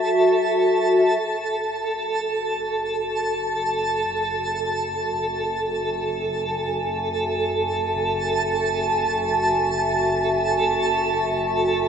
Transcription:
0, 0, Header, 1, 4, 480
1, 0, Start_track
1, 0, Key_signature, 3, "minor"
1, 0, Tempo, 500000
1, 11408, End_track
2, 0, Start_track
2, 0, Title_t, "Ambient pad"
2, 0, Program_c, 0, 92
2, 0, Note_on_c, 0, 66, 75
2, 0, Note_on_c, 0, 76, 74
2, 0, Note_on_c, 0, 80, 81
2, 0, Note_on_c, 0, 81, 64
2, 1166, Note_off_c, 0, 66, 0
2, 1170, Note_off_c, 0, 81, 0
2, 1175, Note_off_c, 0, 80, 0
2, 1177, Note_off_c, 0, 76, 0
2, 1177, Note_on_c, 0, 66, 84
2, 1356, Note_on_c, 0, 76, 77
2, 2173, Note_on_c, 0, 81, 74
2, 2223, Note_on_c, 0, 80, 77
2, 11408, Note_off_c, 0, 66, 0
2, 11408, Note_off_c, 0, 76, 0
2, 11408, Note_off_c, 0, 80, 0
2, 11408, Note_off_c, 0, 81, 0
2, 11408, End_track
3, 0, Start_track
3, 0, Title_t, "Synth texture"
3, 0, Program_c, 1, 99
3, 0, Note_on_c, 1, 69, 76
3, 1180, Note_off_c, 1, 69, 0
3, 1192, Note_on_c, 1, 69, 71
3, 11408, Note_off_c, 1, 69, 0
3, 11408, End_track
4, 0, Start_track
4, 0, Title_t, "Double bass section"
4, 0, Program_c, 2, 48
4, 1173, Note_on_c, 2, 30, 69
4, 11408, Note_off_c, 2, 30, 0
4, 11408, End_track
0, 0, End_of_file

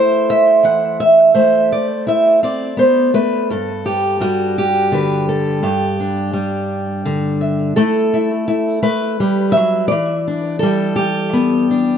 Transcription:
0, 0, Header, 1, 2, 480
1, 0, Start_track
1, 0, Tempo, 712504
1, 907, Time_signature, 6, 3, 24, 8
1, 8069, End_track
2, 0, Start_track
2, 0, Title_t, "Steel-string acoustic guitar"
2, 0, Program_c, 0, 25
2, 0, Note_on_c, 0, 57, 64
2, 0, Note_on_c, 0, 64, 57
2, 0, Note_on_c, 0, 69, 42
2, 0, Note_on_c, 0, 72, 84
2, 201, Note_on_c, 0, 76, 89
2, 425, Note_on_c, 0, 52, 54
2, 433, Note_off_c, 0, 76, 0
2, 435, Note_on_c, 0, 78, 89
2, 671, Note_off_c, 0, 78, 0
2, 673, Note_off_c, 0, 72, 0
2, 674, Note_on_c, 0, 76, 86
2, 874, Note_off_c, 0, 57, 0
2, 880, Note_off_c, 0, 69, 0
2, 905, Note_on_c, 0, 72, 87
2, 910, Note_on_c, 0, 57, 66
2, 1151, Note_off_c, 0, 76, 0
2, 1161, Note_on_c, 0, 74, 74
2, 1181, Note_off_c, 0, 52, 0
2, 1181, Note_off_c, 0, 64, 0
2, 1393, Note_on_c, 0, 64, 60
2, 1394, Note_off_c, 0, 74, 0
2, 1403, Note_on_c, 0, 76, 85
2, 1626, Note_off_c, 0, 72, 0
2, 1633, Note_off_c, 0, 64, 0
2, 1635, Note_off_c, 0, 76, 0
2, 1635, Note_on_c, 0, 60, 62
2, 1643, Note_on_c, 0, 74, 81
2, 1863, Note_off_c, 0, 60, 0
2, 1866, Note_on_c, 0, 59, 57
2, 1879, Note_on_c, 0, 72, 78
2, 2106, Note_off_c, 0, 57, 0
2, 2107, Note_off_c, 0, 59, 0
2, 2113, Note_off_c, 0, 72, 0
2, 2114, Note_on_c, 0, 57, 54
2, 2118, Note_on_c, 0, 71, 81
2, 2351, Note_off_c, 0, 57, 0
2, 2353, Note_off_c, 0, 71, 0
2, 2355, Note_off_c, 0, 74, 0
2, 2360, Note_on_c, 0, 43, 70
2, 2366, Note_on_c, 0, 69, 81
2, 2597, Note_on_c, 0, 67, 74
2, 2832, Note_on_c, 0, 55, 60
2, 2839, Note_on_c, 0, 66, 80
2, 3073, Note_off_c, 0, 67, 0
2, 3077, Note_off_c, 0, 69, 0
2, 3086, Note_on_c, 0, 67, 85
2, 3312, Note_on_c, 0, 50, 57
2, 3330, Note_on_c, 0, 71, 79
2, 3553, Note_off_c, 0, 66, 0
2, 3558, Note_off_c, 0, 71, 0
2, 3561, Note_on_c, 0, 69, 77
2, 3782, Note_off_c, 0, 43, 0
2, 3786, Note_off_c, 0, 67, 0
2, 3790, Note_off_c, 0, 50, 0
2, 3790, Note_on_c, 0, 43, 70
2, 3794, Note_on_c, 0, 67, 73
2, 4034, Note_off_c, 0, 69, 0
2, 4042, Note_on_c, 0, 62, 47
2, 4259, Note_off_c, 0, 55, 0
2, 4267, Note_on_c, 0, 55, 58
2, 4752, Note_on_c, 0, 50, 61
2, 4989, Note_off_c, 0, 67, 0
2, 4991, Note_on_c, 0, 76, 40
2, 5201, Note_off_c, 0, 76, 0
2, 5225, Note_off_c, 0, 62, 0
2, 5227, Note_off_c, 0, 55, 0
2, 5228, Note_on_c, 0, 69, 93
2, 5229, Note_off_c, 0, 43, 0
2, 5230, Note_off_c, 0, 50, 0
2, 5233, Note_on_c, 0, 57, 80
2, 5238, Note_on_c, 0, 64, 49
2, 5478, Note_off_c, 0, 64, 0
2, 5481, Note_on_c, 0, 64, 50
2, 5708, Note_off_c, 0, 64, 0
2, 5711, Note_on_c, 0, 64, 60
2, 5938, Note_off_c, 0, 57, 0
2, 5942, Note_off_c, 0, 64, 0
2, 5943, Note_off_c, 0, 69, 0
2, 5945, Note_on_c, 0, 57, 69
2, 5946, Note_on_c, 0, 71, 98
2, 6187, Note_off_c, 0, 57, 0
2, 6198, Note_on_c, 0, 55, 69
2, 6413, Note_on_c, 0, 76, 107
2, 6433, Note_off_c, 0, 55, 0
2, 6445, Note_on_c, 0, 54, 60
2, 6652, Note_off_c, 0, 76, 0
2, 6655, Note_on_c, 0, 74, 98
2, 6666, Note_off_c, 0, 71, 0
2, 6677, Note_off_c, 0, 54, 0
2, 6680, Note_on_c, 0, 52, 76
2, 6922, Note_on_c, 0, 62, 49
2, 7132, Note_off_c, 0, 62, 0
2, 7135, Note_on_c, 0, 69, 99
2, 7159, Note_on_c, 0, 55, 70
2, 7379, Note_off_c, 0, 74, 0
2, 7382, Note_on_c, 0, 67, 95
2, 7634, Note_on_c, 0, 59, 58
2, 7862, Note_off_c, 0, 69, 0
2, 7885, Note_on_c, 0, 62, 47
2, 8069, Note_off_c, 0, 52, 0
2, 8069, Note_off_c, 0, 55, 0
2, 8069, Note_off_c, 0, 59, 0
2, 8069, Note_off_c, 0, 62, 0
2, 8069, Note_off_c, 0, 67, 0
2, 8069, End_track
0, 0, End_of_file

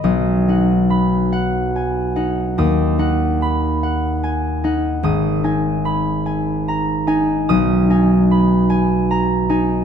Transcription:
0, 0, Header, 1, 2, 480
1, 0, Start_track
1, 0, Key_signature, 5, "major"
1, 0, Tempo, 859599
1, 30, Time_signature, 6, 3, 24, 8
1, 509, Tempo, 827586
1, 2429, Tempo, 810811
1, 5757, End_track
2, 0, Start_track
2, 0, Title_t, "Harp"
2, 0, Program_c, 0, 46
2, 0, Note_on_c, 0, 63, 41
2, 0, Note_on_c, 0, 75, 38
2, 0, Note_on_c, 0, 83, 43
2, 21, Note_on_c, 0, 35, 59
2, 24, Note_on_c, 0, 87, 68
2, 265, Note_off_c, 0, 63, 0
2, 270, Note_on_c, 0, 63, 48
2, 273, Note_on_c, 0, 78, 51
2, 497, Note_off_c, 0, 83, 0
2, 504, Note_on_c, 0, 83, 55
2, 741, Note_off_c, 0, 78, 0
2, 748, Note_on_c, 0, 78, 55
2, 1000, Note_on_c, 0, 80, 46
2, 1225, Note_off_c, 0, 78, 0
2, 1228, Note_off_c, 0, 63, 0
2, 1232, Note_on_c, 0, 78, 53
2, 1235, Note_on_c, 0, 63, 50
2, 1398, Note_off_c, 0, 80, 0
2, 1472, Note_off_c, 0, 87, 0
2, 1476, Note_on_c, 0, 39, 61
2, 1478, Note_off_c, 0, 35, 0
2, 1479, Note_on_c, 0, 87, 78
2, 1707, Note_off_c, 0, 63, 0
2, 1707, Note_off_c, 0, 78, 0
2, 1712, Note_on_c, 0, 63, 49
2, 1716, Note_on_c, 0, 78, 53
2, 1957, Note_off_c, 0, 83, 0
2, 1964, Note_on_c, 0, 83, 56
2, 2134, Note_off_c, 0, 75, 0
2, 2195, Note_off_c, 0, 78, 0
2, 2202, Note_on_c, 0, 78, 58
2, 2437, Note_on_c, 0, 80, 48
2, 2669, Note_off_c, 0, 63, 0
2, 2672, Note_off_c, 0, 78, 0
2, 2676, Note_on_c, 0, 63, 52
2, 2679, Note_on_c, 0, 78, 58
2, 2843, Note_off_c, 0, 80, 0
2, 2905, Note_off_c, 0, 87, 0
2, 2909, Note_on_c, 0, 32, 64
2, 2915, Note_on_c, 0, 87, 78
2, 2932, Note_off_c, 0, 78, 0
2, 2935, Note_off_c, 0, 39, 0
2, 3144, Note_off_c, 0, 63, 0
2, 3149, Note_on_c, 0, 63, 54
2, 3152, Note_on_c, 0, 80, 56
2, 3386, Note_off_c, 0, 83, 0
2, 3393, Note_on_c, 0, 83, 57
2, 3628, Note_off_c, 0, 80, 0
2, 3635, Note_on_c, 0, 80, 58
2, 3886, Note_on_c, 0, 82, 52
2, 4109, Note_off_c, 0, 80, 0
2, 4111, Note_off_c, 0, 63, 0
2, 4116, Note_on_c, 0, 63, 55
2, 4118, Note_on_c, 0, 80, 63
2, 4288, Note_off_c, 0, 82, 0
2, 4356, Note_off_c, 0, 87, 0
2, 4363, Note_on_c, 0, 87, 87
2, 4368, Note_on_c, 0, 35, 72
2, 4378, Note_off_c, 0, 32, 0
2, 4601, Note_off_c, 0, 63, 0
2, 4602, Note_off_c, 0, 80, 0
2, 4607, Note_on_c, 0, 63, 58
2, 4611, Note_on_c, 0, 80, 63
2, 4843, Note_off_c, 0, 83, 0
2, 4850, Note_on_c, 0, 83, 64
2, 5072, Note_off_c, 0, 80, 0
2, 5079, Note_on_c, 0, 80, 68
2, 5321, Note_on_c, 0, 82, 58
2, 5545, Note_off_c, 0, 63, 0
2, 5545, Note_off_c, 0, 80, 0
2, 5550, Note_on_c, 0, 63, 62
2, 5554, Note_on_c, 0, 80, 63
2, 5723, Note_off_c, 0, 82, 0
2, 5757, Note_off_c, 0, 35, 0
2, 5757, Note_off_c, 0, 63, 0
2, 5757, Note_off_c, 0, 80, 0
2, 5757, Note_off_c, 0, 83, 0
2, 5757, Note_off_c, 0, 87, 0
2, 5757, End_track
0, 0, End_of_file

